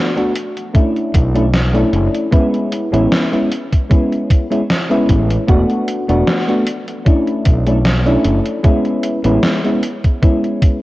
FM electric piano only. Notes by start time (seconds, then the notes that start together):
Already playing: A3 B3 D4 F#4
0.16 A3 B3 D4 F#4
0.74 A3 C#4 D4 E4
1.35 A3 C#4 D4 E4
1.74 A3 C#4 D4 E4
2.31 G#3 B3 C#4 E4
2.92 G#3 B3 C#4 E4
3.32 G#3 B3 C#4 E4
3.89 G#3 B3 C#4 E4
4.50 G#3 B3 C#4 E4
4.90 G#3 B3 C#4 E4
5.48 A3 B3 D4 F#4
6.08 A3 B3 D4 F#4
6.48 A3 B3 D4 F#4
7.05 A3 C#4 D4 E4
7.66 A3 C#4 D4 E4
8.06 A3 C#4 D4 E4
8.63 G#3 B3 C#4 E4
9.24 G#3 B3 C#4 E4
9.64 G#3 B3 C#4 E4
10.22 G#3 B3 C#4 E4